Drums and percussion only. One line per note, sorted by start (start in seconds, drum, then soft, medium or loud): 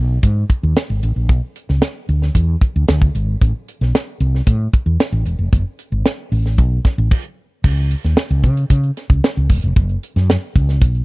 0.23 kick medium
0.23 closed hi-hat medium
0.49 kick medium
0.49 closed hi-hat medium
0.76 snare loud
0.76 closed hi-hat medium
1.03 closed hi-hat medium
1.29 kick loud
1.29 closed hi-hat medium
1.56 closed hi-hat medium
1.69 snare soft
1.82 snare medium
1.82 closed hi-hat medium
2.08 closed hi-hat medium
2.22 snare soft
2.35 kick medium
2.35 closed hi-hat medium
2.61 kick medium
2.61 closed hi-hat medium
2.88 snare loud
2.88 closed hi-hat medium
3.02 kick loud
3.15 closed hi-hat medium
3.41 kick loud
3.41 closed hi-hat medium
3.68 closed hi-hat medium
3.82 snare soft
3.95 snare loud
3.95 closed hi-hat loud
4.21 closed hi-hat medium
4.35 snare soft
4.47 kick medium
4.47 closed hi-hat medium
4.73 kick medium
4.73 closed hi-hat medium
5.00 snare loud
5.00 closed hi-hat medium
5.26 closed hi-hat medium
5.53 kick loud
5.53 closed hi-hat medium
5.79 closed hi-hat medium
6.05 snare loud
6.05 closed hi-hat loud
6.32 open hi-hat medium
6.46 snare soft
6.58 kick medium
6.58 closed hi-hat medium
6.85 kick medium
6.85 snare soft
6.85 closed hi-hat medium
7.11 kick loud
7.11 crash medium
7.64 kick loud
7.64 crash medium
7.77 closed hi-hat soft
7.91 closed hi-hat medium
8.04 snare soft
8.04 closed hi-hat medium
8.17 snare loud
8.30 closed hi-hat soft
8.43 kick medium
8.43 closed hi-hat medium
8.57 closed hi-hat medium
8.70 kick medium
8.70 closed hi-hat medium
8.83 closed hi-hat soft
8.97 snare soft
8.97 closed hi-hat medium
9.09 kick medium
9.09 closed hi-hat soft
9.24 snare loud
9.37 closed hi-hat soft
9.50 kick medium
9.50 open hi-hat medium
9.63 closed hi-hat soft
9.76 kick loud
9.76 closed hi-hat medium
9.89 closed hi-hat soft
10.03 closed hi-hat medium
10.16 snare soft
10.16 closed hi-hat medium
10.30 snare medium
10.55 kick medium
10.55 closed hi-hat medium
10.69 snare soft
10.69 closed hi-hat medium
10.81 kick medium
10.81 closed hi-hat medium
10.95 closed hi-hat soft